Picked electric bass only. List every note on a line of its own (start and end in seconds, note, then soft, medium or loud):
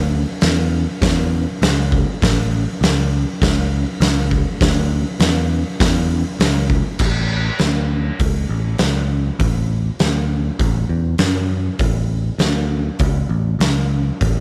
0.00 0.24 D2 medium
0.43 0.85 E2 medium
1.02 1.44 E2 loud
1.62 2.05 C#2 loud
2.23 2.65 A1 medium
2.81 3.24 C#2 medium
3.42 3.84 C#2 loud
4.00 4.43 C#2 medium
4.61 5.03 D2 medium
5.20 5.62 E2 medium
5.80 6.23 E2 loud
6.39 6.82 C#2 medium
7.00 7.49 A1 medium
7.61 8.10 D2 medium
8.19 8.44 C#2 medium
8.49 8.74 A1 medium
8.80 9.29 C#2 medium
9.39 9.89 A1 medium
10.00 10.49 D2 medium
10.59 10.84 A1 loud
10.89 11.14 E2 medium
11.19 11.69 F#2 medium
11.79 12.29 A1 medium
12.38 12.89 D2 medium
12.99 13.25 C#2 medium
13.29 13.55 A1 medium
13.59 14.10 C#2 medium
14.21 14.40 A1 medium